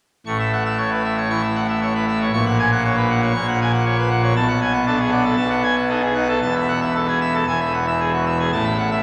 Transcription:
0.26 A1 A2 C#6
0.40 E5
0.53 F#5
0.66 E5
0.78 C#5
0.91 B4
1.04 E5
1.18 C#5
1.30 E3 C#6
1.44 E5
1.56 F#5
1.69 E5
1.82 C#5
1.95 B4
2.07 E5
2.21 C#5
2.33 A#1 A#2 C#6
2.46 F#5
2.59 G#5
2.72 F#5
2.85 C#5
2.97 B4
3.10 F#5
3.22 C#5
3.34 A#1 A#2 C#6
3.48 F#5
3.61 G#5
3.73 F#5
3.85 C#5
3.98 B4
4.10 F#5
4.23 C#5
4.36 B1 B2 A5
4.48 F#5
4.62 G#5
4.74 F#5
4.87 D4 A4
4.99 G#4
5.12 D4 F#5
5.24 A4
5.37 B1 B2 A5
5.50 F#5
5.63 G#5
5.76 F#5
5.89 D#4 A4
6.02 G#4
6.15 D#4 F#5
6.29 A4
6.42 E1 E2 A5
6.55 E5
6.68 F#5
6.82 E5
6.95 A4
7.08 G#4
7.21 E5
7.34 A4
7.47 E1 E2 G#5
7.61 E5
7.74 F#5
7.88 E5
8.00 G#4
8.14 F#4
8.26 E5
8.40 G#4
8.52 A1 A2 A5
8.65 E5
8.78 F#5
8.91 E5

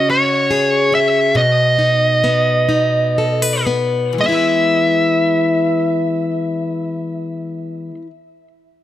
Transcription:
Already playing: C#3 C#4
0.09 F#4 C#5
0.51 G#4
0.92 C#4 E5
1.35 B2 D#5
1.79 D#4
2.24 B3
2.69 D#4
3.18 A4
3.42 B4
3.67 B3
4.13 E3
4.18 G#3 E5
4.24 B3
4.29 E4 B4

